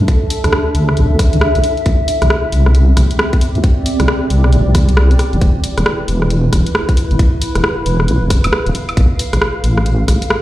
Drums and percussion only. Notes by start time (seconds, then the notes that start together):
0.08 kick, closed hi-hat
0.30 open hi-hat
0.44 cross-stick, closed hi-hat
0.53 cross-stick
0.75 open hi-hat
0.89 cross-stick
0.97 closed hi-hat
1.19 kick, cross-stick, open hi-hat
1.33 closed hi-hat
1.41 cross-stick
1.55 closed hi-hat
1.64 open hi-hat
1.77 closed hi-hat
1.86 kick, closed hi-hat
2.08 open hi-hat
2.22 cross-stick, closed hi-hat
2.30 cross-stick
2.52 open hi-hat
2.66 cross-stick
2.75 closed hi-hat
2.97 kick, cross-stick, open hi-hat
3.11 closed hi-hat
3.19 cross-stick
3.33 kick, closed hi-hat
3.41 open hi-hat
3.55 closed hi-hat
3.64 kick, closed hi-hat
3.86 open hi-hat
4.00 cross-stick, closed hi-hat
4.08 cross-stick
4.30 open hi-hat
4.44 cross-stick
4.53 closed hi-hat
4.75 kick, cross-stick, open hi-hat
4.89 closed hi-hat
4.97 cross-stick
5.11 closed hi-hat
5.19 cross-stick, open hi-hat
5.33 closed hi-hat
5.41 kick, closed hi-hat
5.64 open hi-hat
5.78 cross-stick, closed hi-hat
5.86 cross-stick
6.08 open hi-hat
6.22 cross-stick
6.30 closed hi-hat
6.53 kick, cross-stick, open hi-hat
6.67 closed hi-hat
6.75 cross-stick
6.89 kick, closed hi-hat
6.97 open hi-hat
7.11 closed hi-hat
7.19 kick, closed hi-hat
7.42 open hi-hat
7.55 cross-stick, closed hi-hat
7.64 cross-stick
7.86 open hi-hat
8.00 cross-stick
8.08 closed hi-hat
8.30 kick, cross-stick, open hi-hat
8.44 closed hi-hat, high woodblock
8.53 cross-stick
8.66 closed hi-hat
8.75 open hi-hat
8.89 closed hi-hat, high woodblock
8.97 kick, closed hi-hat
9.19 open hi-hat
9.33 cross-stick, closed hi-hat
9.42 cross-stick
9.64 open hi-hat
9.78 cross-stick
9.86 closed hi-hat
10.08 kick, cross-stick, open hi-hat
10.22 closed hi-hat
10.30 cross-stick